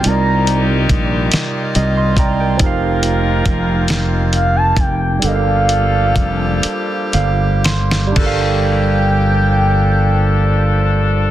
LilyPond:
<<
  \new Staff \with { instrumentName = "Soft synth lead" } { \time 6/8 \key g \minor \tempo 4. = 44 bes''4 r2 | r2 f''16 a''16 g''8 | f''2 r4 | g''2. | }
  \new Staff \with { instrumentName = "Tine electric piano" } { \time 6/8 \key g \minor << { r2 ees''16 <ees'' c'''>16 <d'' g'' bes''>16 <bes' g''>16~ | <bes' g''>16 r2 r8. | r2 f''8 c'''8 | r2. | } \\ { <c g ees' f' bes' d''>2. | <f ees' g' bes' f''>2. | <g d' a' bes' ees'' f''>2. | <g d' a' bes' f''>2. | } >> }
  \new Staff \with { instrumentName = "Horn section" } { \time 6/8 \key g \minor <g ees' g'>2~ <g ees' g'>8 r8 | <ees' f' bes'>2~ <ees' f' bes'>8 r8 | <d' f' a'>2~ <d' f' a'>8 r8 | <f d' a'>2. | }
  \new Staff \with { instrumentName = "Woodwind section" } { \time 6/8 \key g \minor << { <ees f'>2.~ | <ees f'>2. | <f g'>2. | <f g bes g'>2. | } \\ { <bes ees'>2. | <bes c'>2. | g2. | r2. | } >> }
  \new Staff \with { instrumentName = "Fretless electric bass" } { \clef bass \time 6/8 \key g \minor c,4 bes,,8 r8 c,4 | f,,4 f,,4. f,,8 | g,,4 f,,8 r8 g,,4 | g,,2. | }
  \new DrumStaff \with { instrumentName = "Drums" } \drummode { \time 6/8 hh8 hh8 <hh bd>8 <hh sn>8 hh8 <hh bd>8 | <hh bd>8 hh8 <hh bd>8 <hh sn>8 hh8 <hh bd>8 | hh8 hh8 <hh bd>8 hh8 hh8 <hh sn>16 sn16 | <cymc bd>4. r4. | }
>>